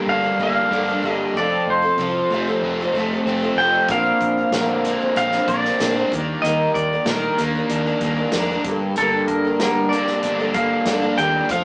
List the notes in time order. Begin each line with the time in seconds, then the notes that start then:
Already playing: G2 G3 A#3 D4 A4
0.06 G1 D4 F5
0.23 G3 A#3 D4 A4
0.38 G1 G3 A#3 D4
0.42 A4 F5
0.70 G2 D3 G3 A#3
0.74 D4 A4
0.88 G3 A#3 D4 A4
1.02 G1 G3 A#3 D4
1.06 A4
1.12 D#5
1.34 F1 F2 F3 D5
1.38 C4 F4 A4
1.66 F1
1.70 C5
1.82 C4 F4 A4
1.97 C2 F3 C4 F4 A4
2.30 F1 F3 A3 C4 F4
2.34 A4
2.48 C4 F4 A4
2.61 F1 C4
2.81 C4 F4 A4
2.92 F1 F3 A3
2.97 C4 F4 A4
3.13 C4 F4 A4
3.25 F1 F3
3.29 C4 F4 A4
3.43 C4 F4 A4
3.55 F1 F3 G5
3.60 C4 F4 A4
3.87 A#1 A#2 D3 F3 C4 A#4, kick, closed hi-hat
3.91 D4 F5
4.20 A#1, kick, closed hi-hat
4.37 F3 C4 D4 A#4
4.51 A#1 A#2, snare, closed hi-hat
4.55 D3 F3 C4 D4 A#4
4.85 F3 A#3 C4 D4 A#4, closed hi-hat
5.00 F3 C4 D4 A#4
5.16 A#1 C4 F5, closed hi-hat
5.32 F3 C4 D4 A#4, snare
5.47 A#1 F3 A#3 C4 D4 A#4 D5, kick, closed hi-hat
5.64 F3 C4 D4 A#4, snare
5.79 A#2 D3 F3 C4 D4 A#4, snare, closed hi-hat
5.96 F3 C4 D4 A#4
6.11 D#2 D#3 G3 A#3 D4 A#4, kick, closed hi-hat
6.42 D#2 D#3 G3 D#5, closed hi-hat
6.46 A#3 A#4
6.74 D#2 D5, kick, closed hi-hat
6.93 A#3 D4 A#4
7.05 A#2 D#3 G3 A#3, snare, closed hi-hat
7.09 D4 A#4
7.38 D#2 G3 A#3 D4, closed hi-hat
7.42 A#4
7.55 A#3 D4 A#4
7.69 D#2 D4, closed hi-hat
7.86 A#3 D4 A#4
8.00 D#2 G3 A#3, kick, closed hi-hat
8.04 D4 A#4
8.18 A#3 D4 A#4
8.32 F2 D#3 G3 A#3, snare, closed hi-hat
8.36 D4 A#4
8.51 A#3 D4 A#4
8.64 G1 G2 G3 A#3, kick, closed hi-hat
8.68 D4 A4
8.96 G1 G2 D3 G3 A4, closed hi-hat
9.00 A#3 D4 A4
9.28 G1 A#4, kick, closed hi-hat
9.45 G3 A#3 D4 A4
9.59 G1 G2 D3 G3 A#3 D4 A#4, snare, closed hi-hat
9.89 G3 D5, closed hi-hat
9.94 A#3 D4 A4
10.07 snare
10.23 G1 D4, closed hi-hat
10.39 G3 A#3 D4 A4
10.53 G1 G3 A#3 D4 A4 F5, kick, closed hi-hat
10.86 G2 D3 G3 A#3 D4 A4, snare, closed hi-hat
11.02 G3 A#3 D4 A4
11.17 D#2 G3 A#3 D4 A4 G5, closed hi-hat
11.49 F1 F3 C4 F4 A4 F5, kick, closed hi-hat